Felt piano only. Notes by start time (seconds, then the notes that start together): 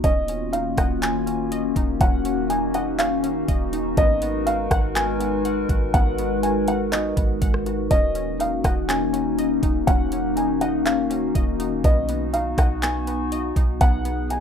0.04 D#5
0.53 F5
0.78 F#5
1.02 G#5
2.01 F#5
2.50 G#5
2.75 F#5
2.99 F5
3.98 D#5
4.46 F5
4.71 F#5
4.96 G#5
5.94 F#5
6.43 G#5
6.68 F#5
6.92 D#5
7.91 D#5
8.41 F5
8.65 F#5
8.88 G#5
9.87 F#5
10.37 G#5
10.61 F#5
10.86 F5
11.85 D#5
12.34 F5
12.59 F#5
12.83 G#5
13.81 F#5
14.31 G#5